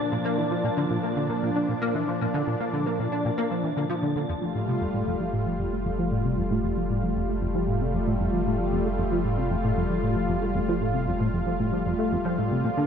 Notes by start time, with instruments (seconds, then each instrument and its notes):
Already playing: analog synth pad A#2 F3 D4, synth texture A5
0.00 analog synth bass D4
0.12 analog synth bass A#2
0.25 analog synth bass A#3
0.38 analog synth bass E3
0.51 analog synth bass F3
0.64 analog synth bass A#2
0.77 analog synth bass D3
0.90 analog synth bass A#2
1.03 analog synth bass A#3
1.16 analog synth bass D3
1.30 analog synth bass A#3
1.43 analog synth bass A#2
1.56 analog synth bass D4
1.69 analog synth bass A#2
1.82 analog synth bass A#3
1.95 analog synth bass E3
2.08 analog synth bass F3
2.21 analog synth bass A#2
2.34 analog synth bass D3
2.47 analog synth bass A#2
2.60 analog synth bass A#3
2.73 analog synth bass D3
2.86 analog synth bass A#3
2.99 analog synth bass A#2
3.12 analog synth bass D4
3.25 analog synth bass A#2
3.38 analog synth bass A#3
3.51 analog synth bass F3
3.63 analog synth bass E3
3.77 analog synth bass D3
3.90 analog synth bass F3
4.02 analog synth bass D3
4.16 analog synth bass D3
4.29 sub bass F1, analog synth bass F2, analog synth pad G3 A3 F4
4.42 analog synth bass F3
4.55 analog synth bass A2
4.68 analog synth bass C3
4.81 analog synth bass F2
4.94 analog synth bass A2
5.07 analog synth bass F2
5.20 analog synth bass F3
5.33 analog synth bass A2
5.46 analog synth bass F3
5.59 analog synth bass F2
5.72 analog synth bass A3
5.85 analog synth bass F2
5.98 analog synth bass F3
6.11 analog synth bass A2
6.24 analog synth bass C3
6.38 analog synth bass F2
6.50 analog synth bass A2
6.64 analog synth bass F2
6.77 analog synth bass F3
6.90 analog synth bass A2
7.03 analog synth bass F3
7.16 analog synth bass F2
7.29 analog synth bass A3
7.41 analog synth bass F2
7.55 analog synth bass F3
7.68 analog synth bass A2
7.81 analog synth bass C3
7.94 analog synth bass F2
8.07 analog synth bass A2
8.20 analog synth bass F2
8.33 analog synth bass F3
8.46 analog synth bass A2
8.59 analog synth bass F3
8.72 analog synth bass F2
8.85 analog synth bass A3
8.98 analog synth bass F2
9.12 analog synth bass F3
9.24 analog synth bass A2
9.38 analog synth bass C3
9.51 analog synth bass F2
9.64 analog synth bass A2
9.77 analog synth bass F2
9.90 analog synth bass F3
10.03 analog synth bass A2
10.16 analog synth bass F3
10.29 analog synth bass F2
10.42 analog synth bass A3
10.55 analog synth bass F2
10.68 analog synth bass F3
10.81 analog synth bass A2
10.94 analog synth bass C3
11.07 analog synth bass F2
11.20 analog synth bass A2
11.33 analog synth bass F2
11.46 analog synth bass F3
11.60 analog synth bass A2
11.72 analog synth bass F3
11.86 analog synth bass F2
11.99 analog synth bass A3
12.12 analog synth bass F2
12.25 analog synth bass F3
12.38 analog synth bass A2
12.51 analog synth bass C3
12.64 sub bass A#1, analog synth bass A#2, analog synth pad A#3 D5
12.77 analog synth bass D3